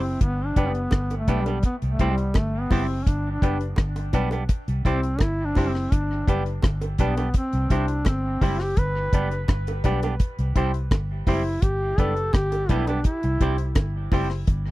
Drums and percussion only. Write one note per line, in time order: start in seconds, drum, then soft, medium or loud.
0.21 kick loud
0.21 closed hi-hat medium
0.56 kick loud
0.56 closed hi-hat medium
0.75 closed hi-hat soft
0.91 kick loud
0.91 cross-stick loud
0.91 closed hi-hat medium
0.91 high bongo medium
1.10 closed hi-hat medium
1.10 high bongo medium
1.28 kick medium
1.28 closed hi-hat medium
1.28 low bongo medium
1.46 closed hi-hat soft
1.46 high bongo medium
1.63 kick loud
1.63 closed hi-hat medium
1.82 closed hi-hat soft
1.99 kick medium
1.99 closed hi-hat medium
2.18 closed hi-hat medium
2.34 kick loud
2.34 cross-stick loud
2.34 closed hi-hat medium
2.34 high bongo medium
2.71 kick medium
2.71 open hi-hat medium
2.71 low bongo medium
3.07 kick loud
3.07 closed hi-hat medium
3.42 kick loud
3.42 closed hi-hat medium
3.61 closed hi-hat soft
3.76 kick loud
3.76 cross-stick loud
3.76 closed hi-hat medium
3.76 high bongo medium
3.96 closed hi-hat medium
3.96 high bongo medium
4.13 kick medium
4.13 closed hi-hat medium
4.13 low bongo medium
4.31 closed hi-hat soft
4.31 high bongo medium
4.49 kick loud
4.49 closed hi-hat medium
4.68 closed hi-hat soft
4.85 kick medium
4.85 closed hi-hat medium
5.03 closed hi-hat medium
5.19 kick loud
5.19 cross-stick loud
5.19 closed hi-hat medium
5.19 high bongo medium
5.55 kick medium
5.55 open hi-hat medium
5.55 low bongo medium
5.75 cross-stick medium
5.92 kick loud
5.92 closed hi-hat medium
6.28 kick loud
6.28 closed hi-hat medium
6.46 closed hi-hat soft
6.62 kick loud
6.62 cross-stick loud
6.62 closed hi-hat medium
6.62 high bongo medium
6.81 closed hi-hat medium
6.81 high bongo medium
6.98 kick medium
6.98 closed hi-hat medium
6.98 low bongo medium
7.17 closed hi-hat soft
7.17 high bongo medium
7.34 kick loud
7.34 closed hi-hat medium
7.53 closed hi-hat soft
7.70 kick medium
7.70 closed hi-hat medium
7.88 closed hi-hat medium
8.05 kick loud
8.05 cross-stick loud
8.05 closed hi-hat medium
8.05 high bongo medium
8.41 kick medium
8.41 open hi-hat medium
8.41 low bongo medium
8.60 cross-stick medium
8.77 kick loud
8.77 closed hi-hat loud
9.13 kick loud
9.13 closed hi-hat medium
9.31 closed hi-hat soft
9.48 kick loud
9.48 cross-stick loud
9.48 closed hi-hat medium
9.48 high bongo medium
9.67 closed hi-hat medium
9.67 high bongo medium
9.84 kick medium
9.84 closed hi-hat medium
9.84 low bongo medium
10.03 closed hi-hat soft
10.03 high bongo medium
10.20 kick loud
10.20 closed hi-hat medium
10.39 closed hi-hat soft
10.56 kick medium
10.56 closed hi-hat medium
10.74 closed hi-hat medium
10.91 kick loud
10.91 cross-stick loud
10.91 closed hi-hat medium
10.91 high bongo medium
11.27 kick medium
11.27 open hi-hat medium
11.27 low bongo medium
11.62 kick loud
11.62 closed hi-hat medium
11.98 kick loud
11.98 closed hi-hat medium
12.17 closed hi-hat soft
12.33 kick loud
12.33 cross-stick loud
12.33 closed hi-hat medium
12.33 high bongo medium
12.52 closed hi-hat medium
12.52 high bongo medium
12.69 kick medium
12.69 closed hi-hat medium
12.69 low bongo medium
12.87 closed hi-hat soft
12.87 high bongo medium
13.04 kick loud
13.04 closed hi-hat medium
13.23 closed hi-hat medium
13.41 kick medium
13.41 closed hi-hat medium
13.58 closed hi-hat medium
13.75 kick loud
13.75 cross-stick loud
13.75 closed hi-hat medium
13.75 high bongo medium
14.12 kick medium
14.12 open hi-hat medium
14.12 low bongo medium
14.30 cross-stick medium
14.47 kick loud
14.47 closed hi-hat medium